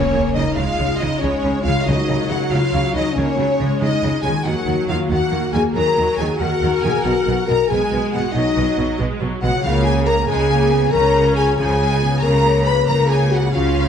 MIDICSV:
0, 0, Header, 1, 9, 480
1, 0, Start_track
1, 0, Tempo, 432277
1, 2066, Time_signature, 12, 3, 24, 8
1, 15416, End_track
2, 0, Start_track
2, 0, Title_t, "Violin section"
2, 0, Program_c, 0, 48
2, 0, Note_on_c, 0, 73, 79
2, 377, Note_on_c, 0, 75, 69
2, 379, Note_off_c, 0, 73, 0
2, 614, Note_off_c, 0, 75, 0
2, 638, Note_on_c, 0, 77, 80
2, 1096, Note_on_c, 0, 75, 74
2, 1102, Note_off_c, 0, 77, 0
2, 1340, Note_off_c, 0, 75, 0
2, 1357, Note_on_c, 0, 73, 72
2, 1826, Note_on_c, 0, 77, 76
2, 1832, Note_off_c, 0, 73, 0
2, 2062, Note_off_c, 0, 77, 0
2, 2084, Note_on_c, 0, 75, 73
2, 2548, Note_off_c, 0, 75, 0
2, 2564, Note_on_c, 0, 78, 76
2, 2794, Note_on_c, 0, 77, 79
2, 2798, Note_off_c, 0, 78, 0
2, 3275, Note_off_c, 0, 77, 0
2, 3276, Note_on_c, 0, 75, 70
2, 3510, Note_off_c, 0, 75, 0
2, 3517, Note_on_c, 0, 73, 70
2, 4223, Note_off_c, 0, 73, 0
2, 4244, Note_on_c, 0, 75, 81
2, 4681, Note_on_c, 0, 80, 74
2, 4709, Note_off_c, 0, 75, 0
2, 4770, Note_off_c, 0, 80, 0
2, 4941, Note_on_c, 0, 78, 67
2, 5414, Note_off_c, 0, 78, 0
2, 5431, Note_on_c, 0, 77, 74
2, 5520, Note_off_c, 0, 77, 0
2, 5665, Note_on_c, 0, 78, 80
2, 6138, Note_off_c, 0, 78, 0
2, 6140, Note_on_c, 0, 80, 74
2, 6229, Note_off_c, 0, 80, 0
2, 6389, Note_on_c, 0, 82, 80
2, 6860, Note_off_c, 0, 82, 0
2, 6868, Note_on_c, 0, 80, 74
2, 6957, Note_off_c, 0, 80, 0
2, 7088, Note_on_c, 0, 78, 75
2, 7567, Note_off_c, 0, 78, 0
2, 7585, Note_on_c, 0, 80, 76
2, 7823, Note_on_c, 0, 78, 78
2, 7826, Note_off_c, 0, 80, 0
2, 8305, Note_off_c, 0, 78, 0
2, 8310, Note_on_c, 0, 82, 84
2, 8548, Note_off_c, 0, 82, 0
2, 8562, Note_on_c, 0, 80, 75
2, 9022, Note_off_c, 0, 80, 0
2, 9042, Note_on_c, 0, 78, 73
2, 9260, Note_on_c, 0, 75, 80
2, 9268, Note_off_c, 0, 78, 0
2, 9979, Note_off_c, 0, 75, 0
2, 10464, Note_on_c, 0, 78, 80
2, 10684, Note_off_c, 0, 78, 0
2, 10706, Note_on_c, 0, 77, 85
2, 10932, Note_on_c, 0, 80, 81
2, 10941, Note_off_c, 0, 77, 0
2, 11021, Note_off_c, 0, 80, 0
2, 11175, Note_on_c, 0, 82, 86
2, 11263, Note_off_c, 0, 82, 0
2, 11423, Note_on_c, 0, 80, 92
2, 12125, Note_off_c, 0, 80, 0
2, 12141, Note_on_c, 0, 82, 90
2, 12610, Note_off_c, 0, 82, 0
2, 12622, Note_on_c, 0, 80, 86
2, 12830, Note_off_c, 0, 80, 0
2, 12843, Note_on_c, 0, 80, 91
2, 13555, Note_off_c, 0, 80, 0
2, 13564, Note_on_c, 0, 82, 84
2, 14044, Note_on_c, 0, 83, 83
2, 14051, Note_off_c, 0, 82, 0
2, 14277, Note_on_c, 0, 82, 89
2, 14290, Note_off_c, 0, 83, 0
2, 14522, Note_off_c, 0, 82, 0
2, 14538, Note_on_c, 0, 80, 81
2, 14773, Note_off_c, 0, 80, 0
2, 14796, Note_on_c, 0, 78, 78
2, 15015, Note_on_c, 0, 77, 77
2, 15027, Note_off_c, 0, 78, 0
2, 15416, Note_off_c, 0, 77, 0
2, 15416, End_track
3, 0, Start_track
3, 0, Title_t, "Violin section"
3, 0, Program_c, 1, 48
3, 0, Note_on_c, 1, 73, 68
3, 380, Note_off_c, 1, 73, 0
3, 387, Note_on_c, 1, 75, 69
3, 606, Note_on_c, 1, 77, 71
3, 619, Note_off_c, 1, 75, 0
3, 1086, Note_off_c, 1, 77, 0
3, 1100, Note_on_c, 1, 75, 72
3, 1329, Note_on_c, 1, 73, 72
3, 1342, Note_off_c, 1, 75, 0
3, 1818, Note_off_c, 1, 73, 0
3, 1826, Note_on_c, 1, 77, 73
3, 2056, Note_on_c, 1, 75, 74
3, 2063, Note_off_c, 1, 77, 0
3, 2544, Note_off_c, 1, 75, 0
3, 2553, Note_on_c, 1, 78, 72
3, 2642, Note_off_c, 1, 78, 0
3, 2800, Note_on_c, 1, 77, 69
3, 3263, Note_on_c, 1, 75, 75
3, 3268, Note_off_c, 1, 77, 0
3, 3499, Note_on_c, 1, 73, 76
3, 3504, Note_off_c, 1, 75, 0
3, 4228, Note_off_c, 1, 73, 0
3, 4248, Note_on_c, 1, 75, 75
3, 4699, Note_on_c, 1, 80, 82
3, 4711, Note_off_c, 1, 75, 0
3, 4940, Note_off_c, 1, 80, 0
3, 4956, Note_on_c, 1, 78, 69
3, 5422, Note_on_c, 1, 77, 72
3, 5432, Note_off_c, 1, 78, 0
3, 5511, Note_off_c, 1, 77, 0
3, 5658, Note_on_c, 1, 78, 68
3, 6135, Note_off_c, 1, 78, 0
3, 6151, Note_on_c, 1, 80, 69
3, 6240, Note_off_c, 1, 80, 0
3, 6394, Note_on_c, 1, 82, 78
3, 6855, Note_on_c, 1, 80, 78
3, 6863, Note_off_c, 1, 82, 0
3, 7098, Note_on_c, 1, 78, 79
3, 7103, Note_off_c, 1, 80, 0
3, 7563, Note_on_c, 1, 80, 77
3, 7572, Note_off_c, 1, 78, 0
3, 7808, Note_on_c, 1, 78, 81
3, 7815, Note_off_c, 1, 80, 0
3, 8288, Note_off_c, 1, 78, 0
3, 8304, Note_on_c, 1, 82, 77
3, 8540, Note_off_c, 1, 82, 0
3, 8545, Note_on_c, 1, 80, 64
3, 9013, Note_off_c, 1, 80, 0
3, 9027, Note_on_c, 1, 78, 75
3, 9116, Note_off_c, 1, 78, 0
3, 9265, Note_on_c, 1, 75, 75
3, 9966, Note_off_c, 1, 75, 0
3, 10466, Note_on_c, 1, 78, 86
3, 10685, Note_off_c, 1, 78, 0
3, 10710, Note_on_c, 1, 77, 82
3, 10926, Note_on_c, 1, 80, 85
3, 10938, Note_off_c, 1, 77, 0
3, 11171, Note_off_c, 1, 80, 0
3, 11200, Note_on_c, 1, 82, 86
3, 11424, Note_off_c, 1, 82, 0
3, 11425, Note_on_c, 1, 80, 80
3, 12117, Note_on_c, 1, 82, 83
3, 12126, Note_off_c, 1, 80, 0
3, 12598, Note_off_c, 1, 82, 0
3, 12616, Note_on_c, 1, 80, 80
3, 12705, Note_off_c, 1, 80, 0
3, 12869, Note_on_c, 1, 80, 87
3, 13568, Note_off_c, 1, 80, 0
3, 13569, Note_on_c, 1, 82, 90
3, 14043, Note_off_c, 1, 82, 0
3, 14052, Note_on_c, 1, 83, 82
3, 14290, Note_off_c, 1, 83, 0
3, 14305, Note_on_c, 1, 82, 78
3, 14537, Note_off_c, 1, 82, 0
3, 14567, Note_on_c, 1, 80, 70
3, 14792, Note_off_c, 1, 80, 0
3, 14807, Note_on_c, 1, 78, 75
3, 15027, Note_off_c, 1, 78, 0
3, 15054, Note_on_c, 1, 77, 75
3, 15416, Note_off_c, 1, 77, 0
3, 15416, End_track
4, 0, Start_track
4, 0, Title_t, "French horn section"
4, 0, Program_c, 2, 60
4, 0, Note_on_c, 2, 61, 92
4, 377, Note_off_c, 2, 61, 0
4, 381, Note_on_c, 2, 63, 87
4, 621, Note_off_c, 2, 63, 0
4, 644, Note_on_c, 2, 65, 89
4, 1115, Note_off_c, 2, 65, 0
4, 1115, Note_on_c, 2, 63, 87
4, 1327, Note_on_c, 2, 61, 91
4, 1345, Note_off_c, 2, 63, 0
4, 1808, Note_off_c, 2, 61, 0
4, 1808, Note_on_c, 2, 65, 82
4, 2053, Note_off_c, 2, 65, 0
4, 2074, Note_on_c, 2, 63, 80
4, 2543, Note_on_c, 2, 66, 93
4, 2553, Note_off_c, 2, 63, 0
4, 2782, Note_off_c, 2, 66, 0
4, 2812, Note_on_c, 2, 65, 87
4, 3256, Note_on_c, 2, 63, 89
4, 3274, Note_off_c, 2, 65, 0
4, 3472, Note_on_c, 2, 61, 90
4, 3500, Note_off_c, 2, 63, 0
4, 4215, Note_off_c, 2, 61, 0
4, 4224, Note_on_c, 2, 63, 87
4, 4678, Note_on_c, 2, 68, 79
4, 4699, Note_off_c, 2, 63, 0
4, 4794, Note_off_c, 2, 68, 0
4, 4945, Note_on_c, 2, 66, 77
4, 5415, Note_on_c, 2, 65, 84
4, 5417, Note_off_c, 2, 66, 0
4, 5660, Note_on_c, 2, 66, 86
4, 5662, Note_off_c, 2, 65, 0
4, 6136, Note_off_c, 2, 66, 0
4, 6139, Note_on_c, 2, 68, 87
4, 6250, Note_off_c, 2, 68, 0
4, 6387, Note_on_c, 2, 70, 96
4, 6859, Note_off_c, 2, 70, 0
4, 6875, Note_on_c, 2, 68, 90
4, 7086, Note_on_c, 2, 66, 89
4, 7108, Note_off_c, 2, 68, 0
4, 7576, Note_off_c, 2, 66, 0
4, 7583, Note_on_c, 2, 68, 88
4, 7824, Note_on_c, 2, 66, 89
4, 7825, Note_off_c, 2, 68, 0
4, 8282, Note_on_c, 2, 70, 98
4, 8296, Note_off_c, 2, 66, 0
4, 8529, Note_off_c, 2, 70, 0
4, 8531, Note_on_c, 2, 68, 83
4, 8998, Note_on_c, 2, 66, 93
4, 9016, Note_off_c, 2, 68, 0
4, 9242, Note_on_c, 2, 63, 89
4, 9245, Note_off_c, 2, 66, 0
4, 9955, Note_off_c, 2, 63, 0
4, 10448, Note_on_c, 2, 66, 92
4, 10675, Note_off_c, 2, 66, 0
4, 10710, Note_on_c, 2, 65, 98
4, 10939, Note_off_c, 2, 65, 0
4, 10948, Note_on_c, 2, 68, 96
4, 11168, Note_on_c, 2, 70, 100
4, 11177, Note_off_c, 2, 68, 0
4, 11278, Note_off_c, 2, 70, 0
4, 11398, Note_on_c, 2, 68, 99
4, 12111, Note_on_c, 2, 70, 103
4, 12112, Note_off_c, 2, 68, 0
4, 12595, Note_on_c, 2, 68, 94
4, 12605, Note_off_c, 2, 70, 0
4, 12820, Note_off_c, 2, 68, 0
4, 12833, Note_on_c, 2, 68, 102
4, 13550, Note_off_c, 2, 68, 0
4, 13567, Note_on_c, 2, 70, 98
4, 14034, Note_on_c, 2, 71, 106
4, 14042, Note_off_c, 2, 70, 0
4, 14280, Note_off_c, 2, 71, 0
4, 14296, Note_on_c, 2, 70, 98
4, 14516, Note_on_c, 2, 68, 93
4, 14537, Note_off_c, 2, 70, 0
4, 14767, Note_off_c, 2, 68, 0
4, 14768, Note_on_c, 2, 66, 90
4, 15011, Note_on_c, 2, 65, 94
4, 15012, Note_off_c, 2, 66, 0
4, 15416, Note_off_c, 2, 65, 0
4, 15416, End_track
5, 0, Start_track
5, 0, Title_t, "Harp"
5, 0, Program_c, 3, 46
5, 0, Note_on_c, 3, 49, 59
5, 0, Note_on_c, 3, 61, 49
5, 0, Note_on_c, 3, 65, 49
5, 0, Note_on_c, 3, 68, 52
5, 1861, Note_off_c, 3, 49, 0
5, 1874, Note_on_c, 3, 49, 55
5, 1911, Note_off_c, 3, 61, 0
5, 1924, Note_on_c, 3, 61, 45
5, 1975, Note_on_c, 3, 66, 47
5, 2026, Note_on_c, 3, 70, 46
5, 2041, Note_off_c, 3, 65, 0
5, 2067, Note_off_c, 3, 68, 0
5, 4755, Note_on_c, 3, 51, 57
5, 4804, Note_on_c, 3, 58, 49
5, 4842, Note_off_c, 3, 66, 0
5, 4856, Note_on_c, 3, 66, 47
5, 4876, Note_off_c, 3, 49, 0
5, 4893, Note_off_c, 3, 70, 0
5, 4901, Note_off_c, 3, 61, 0
5, 4906, Note_on_c, 3, 70, 45
5, 7621, Note_on_c, 3, 47, 57
5, 7673, Note_on_c, 3, 63, 47
5, 7706, Note_off_c, 3, 66, 0
5, 7719, Note_on_c, 3, 66, 48
5, 7747, Note_off_c, 3, 51, 0
5, 7771, Note_off_c, 3, 58, 0
5, 7773, Note_on_c, 3, 71, 46
5, 7823, Note_off_c, 3, 70, 0
5, 10501, Note_on_c, 3, 49, 62
5, 10550, Note_on_c, 3, 61, 51
5, 10604, Note_on_c, 3, 65, 49
5, 10614, Note_off_c, 3, 47, 0
5, 10640, Note_off_c, 3, 63, 0
5, 10651, Note_on_c, 3, 68, 54
5, 10663, Note_off_c, 3, 66, 0
5, 10689, Note_off_c, 3, 71, 0
5, 13359, Note_off_c, 3, 49, 0
5, 13372, Note_on_c, 3, 49, 59
5, 13415, Note_off_c, 3, 61, 0
5, 13428, Note_on_c, 3, 61, 48
5, 13461, Note_off_c, 3, 65, 0
5, 13474, Note_on_c, 3, 65, 51
5, 13528, Note_on_c, 3, 73, 49
5, 13573, Note_off_c, 3, 68, 0
5, 15416, Note_off_c, 3, 49, 0
5, 15416, Note_off_c, 3, 61, 0
5, 15416, Note_off_c, 3, 65, 0
5, 15416, Note_off_c, 3, 73, 0
5, 15416, End_track
6, 0, Start_track
6, 0, Title_t, "Viola section"
6, 0, Program_c, 4, 48
6, 0, Note_on_c, 4, 58, 82
6, 582, Note_off_c, 4, 58, 0
6, 631, Note_on_c, 4, 56, 63
6, 2073, Note_off_c, 4, 56, 0
6, 2073, Note_on_c, 4, 54, 71
6, 3488, Note_off_c, 4, 54, 0
6, 3518, Note_on_c, 4, 58, 69
6, 3751, Note_off_c, 4, 58, 0
6, 3755, Note_on_c, 4, 54, 62
6, 3991, Note_on_c, 4, 56, 64
6, 3995, Note_off_c, 4, 54, 0
6, 4932, Note_off_c, 4, 56, 0
6, 4966, Note_on_c, 4, 54, 63
6, 5662, Note_off_c, 4, 54, 0
6, 5677, Note_on_c, 4, 58, 76
6, 6388, Note_on_c, 4, 54, 70
6, 6394, Note_off_c, 4, 58, 0
6, 7108, Note_on_c, 4, 70, 71
6, 7109, Note_off_c, 4, 54, 0
6, 8545, Note_off_c, 4, 70, 0
6, 8555, Note_on_c, 4, 56, 75
6, 9267, Note_off_c, 4, 56, 0
6, 9270, Note_on_c, 4, 54, 73
6, 9969, Note_off_c, 4, 54, 0
6, 9995, Note_on_c, 4, 56, 74
6, 10226, Note_off_c, 4, 56, 0
6, 10230, Note_on_c, 4, 54, 69
6, 10463, Note_off_c, 4, 54, 0
6, 10471, Note_on_c, 4, 56, 66
6, 10560, Note_off_c, 4, 56, 0
6, 10723, Note_on_c, 4, 58, 71
6, 11415, Note_off_c, 4, 58, 0
6, 11438, Note_on_c, 4, 56, 80
6, 11663, Note_off_c, 4, 56, 0
6, 11672, Note_on_c, 4, 58, 76
6, 11899, Note_off_c, 4, 58, 0
6, 11913, Note_on_c, 4, 59, 71
6, 12144, Note_off_c, 4, 59, 0
6, 12146, Note_on_c, 4, 61, 78
6, 12848, Note_off_c, 4, 61, 0
6, 12871, Note_on_c, 4, 53, 73
6, 13099, Note_off_c, 4, 53, 0
6, 13105, Note_on_c, 4, 56, 68
6, 13336, Note_off_c, 4, 56, 0
6, 13341, Note_on_c, 4, 59, 70
6, 13575, Note_on_c, 4, 58, 64
6, 13579, Note_off_c, 4, 59, 0
6, 15017, Note_off_c, 4, 58, 0
6, 15017, Note_on_c, 4, 61, 81
6, 15416, Note_off_c, 4, 61, 0
6, 15416, End_track
7, 0, Start_track
7, 0, Title_t, "Cello section"
7, 0, Program_c, 5, 48
7, 145, Note_on_c, 5, 49, 63
7, 234, Note_off_c, 5, 49, 0
7, 400, Note_on_c, 5, 49, 62
7, 489, Note_off_c, 5, 49, 0
7, 630, Note_on_c, 5, 49, 65
7, 719, Note_off_c, 5, 49, 0
7, 881, Note_on_c, 5, 49, 56
7, 969, Note_off_c, 5, 49, 0
7, 1122, Note_on_c, 5, 49, 68
7, 1210, Note_off_c, 5, 49, 0
7, 1361, Note_on_c, 5, 49, 68
7, 1450, Note_off_c, 5, 49, 0
7, 1604, Note_on_c, 5, 49, 66
7, 1693, Note_off_c, 5, 49, 0
7, 1852, Note_on_c, 5, 49, 61
7, 1941, Note_off_c, 5, 49, 0
7, 2085, Note_on_c, 5, 49, 66
7, 2174, Note_off_c, 5, 49, 0
7, 2318, Note_on_c, 5, 49, 63
7, 2407, Note_off_c, 5, 49, 0
7, 2557, Note_on_c, 5, 49, 60
7, 2646, Note_off_c, 5, 49, 0
7, 2792, Note_on_c, 5, 49, 64
7, 2881, Note_off_c, 5, 49, 0
7, 3045, Note_on_c, 5, 49, 59
7, 3133, Note_off_c, 5, 49, 0
7, 3275, Note_on_c, 5, 49, 61
7, 3363, Note_off_c, 5, 49, 0
7, 3524, Note_on_c, 5, 49, 66
7, 3613, Note_off_c, 5, 49, 0
7, 3764, Note_on_c, 5, 49, 60
7, 3853, Note_off_c, 5, 49, 0
7, 4000, Note_on_c, 5, 49, 64
7, 4088, Note_off_c, 5, 49, 0
7, 4234, Note_on_c, 5, 49, 67
7, 4322, Note_off_c, 5, 49, 0
7, 4473, Note_on_c, 5, 49, 61
7, 4562, Note_off_c, 5, 49, 0
7, 4708, Note_on_c, 5, 49, 62
7, 4797, Note_off_c, 5, 49, 0
7, 4946, Note_on_c, 5, 51, 65
7, 5035, Note_off_c, 5, 51, 0
7, 5181, Note_on_c, 5, 51, 61
7, 5270, Note_off_c, 5, 51, 0
7, 5428, Note_on_c, 5, 51, 64
7, 5516, Note_off_c, 5, 51, 0
7, 5670, Note_on_c, 5, 51, 61
7, 5759, Note_off_c, 5, 51, 0
7, 5906, Note_on_c, 5, 51, 57
7, 5994, Note_off_c, 5, 51, 0
7, 6153, Note_on_c, 5, 51, 60
7, 6242, Note_off_c, 5, 51, 0
7, 6392, Note_on_c, 5, 51, 62
7, 6481, Note_off_c, 5, 51, 0
7, 6640, Note_on_c, 5, 51, 61
7, 6729, Note_off_c, 5, 51, 0
7, 6879, Note_on_c, 5, 51, 66
7, 6968, Note_off_c, 5, 51, 0
7, 7123, Note_on_c, 5, 51, 68
7, 7211, Note_off_c, 5, 51, 0
7, 7357, Note_on_c, 5, 51, 60
7, 7446, Note_off_c, 5, 51, 0
7, 7604, Note_on_c, 5, 51, 67
7, 7693, Note_off_c, 5, 51, 0
7, 7842, Note_on_c, 5, 47, 71
7, 7931, Note_off_c, 5, 47, 0
7, 8070, Note_on_c, 5, 47, 66
7, 8159, Note_off_c, 5, 47, 0
7, 8319, Note_on_c, 5, 47, 69
7, 8408, Note_off_c, 5, 47, 0
7, 8558, Note_on_c, 5, 47, 66
7, 8647, Note_off_c, 5, 47, 0
7, 8796, Note_on_c, 5, 47, 64
7, 8885, Note_off_c, 5, 47, 0
7, 9041, Note_on_c, 5, 47, 67
7, 9130, Note_off_c, 5, 47, 0
7, 9272, Note_on_c, 5, 47, 66
7, 9361, Note_off_c, 5, 47, 0
7, 9506, Note_on_c, 5, 47, 65
7, 9595, Note_off_c, 5, 47, 0
7, 9745, Note_on_c, 5, 47, 71
7, 9834, Note_off_c, 5, 47, 0
7, 9988, Note_on_c, 5, 47, 70
7, 10076, Note_off_c, 5, 47, 0
7, 10216, Note_on_c, 5, 47, 65
7, 10305, Note_off_c, 5, 47, 0
7, 10469, Note_on_c, 5, 47, 68
7, 10558, Note_off_c, 5, 47, 0
7, 10707, Note_on_c, 5, 49, 80
7, 11336, Note_off_c, 5, 49, 0
7, 11429, Note_on_c, 5, 49, 76
7, 12057, Note_off_c, 5, 49, 0
7, 12147, Note_on_c, 5, 49, 76
7, 12778, Note_off_c, 5, 49, 0
7, 12865, Note_on_c, 5, 49, 72
7, 13495, Note_off_c, 5, 49, 0
7, 13588, Note_on_c, 5, 49, 80
7, 14218, Note_off_c, 5, 49, 0
7, 14312, Note_on_c, 5, 49, 70
7, 14940, Note_off_c, 5, 49, 0
7, 15031, Note_on_c, 5, 49, 71
7, 15416, Note_off_c, 5, 49, 0
7, 15416, End_track
8, 0, Start_track
8, 0, Title_t, "Timpani"
8, 0, Program_c, 6, 47
8, 2095, Note_on_c, 6, 49, 82
8, 2760, Note_off_c, 6, 49, 0
8, 10702, Note_on_c, 6, 49, 72
8, 11374, Note_off_c, 6, 49, 0
8, 13583, Note_on_c, 6, 49, 67
8, 14256, Note_off_c, 6, 49, 0
8, 15416, End_track
9, 0, Start_track
9, 0, Title_t, "Double bass section"
9, 0, Program_c, 7, 48
9, 144, Note_on_c, 7, 37, 63
9, 232, Note_off_c, 7, 37, 0
9, 385, Note_on_c, 7, 37, 62
9, 474, Note_off_c, 7, 37, 0
9, 633, Note_on_c, 7, 37, 68
9, 722, Note_off_c, 7, 37, 0
9, 877, Note_on_c, 7, 37, 67
9, 966, Note_off_c, 7, 37, 0
9, 1118, Note_on_c, 7, 37, 65
9, 1207, Note_off_c, 7, 37, 0
9, 1349, Note_on_c, 7, 37, 65
9, 1438, Note_off_c, 7, 37, 0
9, 1591, Note_on_c, 7, 37, 60
9, 1680, Note_off_c, 7, 37, 0
9, 1824, Note_on_c, 7, 37, 62
9, 1913, Note_off_c, 7, 37, 0
9, 2068, Note_on_c, 7, 37, 63
9, 2157, Note_off_c, 7, 37, 0
9, 2307, Note_on_c, 7, 37, 64
9, 2395, Note_off_c, 7, 37, 0
9, 2543, Note_on_c, 7, 37, 59
9, 2632, Note_off_c, 7, 37, 0
9, 2782, Note_on_c, 7, 37, 66
9, 2870, Note_off_c, 7, 37, 0
9, 3030, Note_on_c, 7, 37, 60
9, 3119, Note_off_c, 7, 37, 0
9, 3261, Note_on_c, 7, 37, 57
9, 3350, Note_off_c, 7, 37, 0
9, 3503, Note_on_c, 7, 37, 66
9, 3592, Note_off_c, 7, 37, 0
9, 3736, Note_on_c, 7, 37, 62
9, 3825, Note_off_c, 7, 37, 0
9, 3982, Note_on_c, 7, 37, 61
9, 4071, Note_off_c, 7, 37, 0
9, 4221, Note_on_c, 7, 37, 62
9, 4310, Note_off_c, 7, 37, 0
9, 4456, Note_on_c, 7, 37, 63
9, 4545, Note_off_c, 7, 37, 0
9, 4698, Note_on_c, 7, 37, 62
9, 4787, Note_off_c, 7, 37, 0
9, 4940, Note_on_c, 7, 39, 62
9, 5029, Note_off_c, 7, 39, 0
9, 5176, Note_on_c, 7, 39, 60
9, 5265, Note_off_c, 7, 39, 0
9, 5418, Note_on_c, 7, 39, 65
9, 5507, Note_off_c, 7, 39, 0
9, 5655, Note_on_c, 7, 39, 65
9, 5744, Note_off_c, 7, 39, 0
9, 5893, Note_on_c, 7, 39, 60
9, 5982, Note_off_c, 7, 39, 0
9, 6144, Note_on_c, 7, 39, 59
9, 6232, Note_off_c, 7, 39, 0
9, 6387, Note_on_c, 7, 39, 66
9, 6476, Note_off_c, 7, 39, 0
9, 6626, Note_on_c, 7, 39, 65
9, 6715, Note_off_c, 7, 39, 0
9, 6855, Note_on_c, 7, 39, 64
9, 6944, Note_off_c, 7, 39, 0
9, 7098, Note_on_c, 7, 39, 63
9, 7187, Note_off_c, 7, 39, 0
9, 7332, Note_on_c, 7, 39, 63
9, 7421, Note_off_c, 7, 39, 0
9, 7570, Note_on_c, 7, 39, 61
9, 7659, Note_off_c, 7, 39, 0
9, 7816, Note_on_c, 7, 35, 67
9, 7905, Note_off_c, 7, 35, 0
9, 8060, Note_on_c, 7, 35, 68
9, 8149, Note_off_c, 7, 35, 0
9, 8307, Note_on_c, 7, 35, 60
9, 8396, Note_off_c, 7, 35, 0
9, 8547, Note_on_c, 7, 35, 71
9, 8636, Note_off_c, 7, 35, 0
9, 8782, Note_on_c, 7, 35, 64
9, 8871, Note_off_c, 7, 35, 0
9, 9017, Note_on_c, 7, 35, 62
9, 9106, Note_off_c, 7, 35, 0
9, 9261, Note_on_c, 7, 35, 74
9, 9350, Note_off_c, 7, 35, 0
9, 9509, Note_on_c, 7, 35, 67
9, 9598, Note_off_c, 7, 35, 0
9, 9751, Note_on_c, 7, 35, 72
9, 9840, Note_off_c, 7, 35, 0
9, 9989, Note_on_c, 7, 35, 63
9, 10077, Note_off_c, 7, 35, 0
9, 10227, Note_on_c, 7, 35, 66
9, 10316, Note_off_c, 7, 35, 0
9, 10469, Note_on_c, 7, 35, 67
9, 10558, Note_off_c, 7, 35, 0
9, 10696, Note_on_c, 7, 37, 77
9, 11331, Note_off_c, 7, 37, 0
9, 11432, Note_on_c, 7, 37, 73
9, 12059, Note_off_c, 7, 37, 0
9, 12144, Note_on_c, 7, 37, 75
9, 12777, Note_off_c, 7, 37, 0
9, 12873, Note_on_c, 7, 37, 78
9, 13499, Note_off_c, 7, 37, 0
9, 13579, Note_on_c, 7, 37, 74
9, 14213, Note_off_c, 7, 37, 0
9, 14307, Note_on_c, 7, 37, 70
9, 14938, Note_off_c, 7, 37, 0
9, 15024, Note_on_c, 7, 37, 68
9, 15416, Note_off_c, 7, 37, 0
9, 15416, End_track
0, 0, End_of_file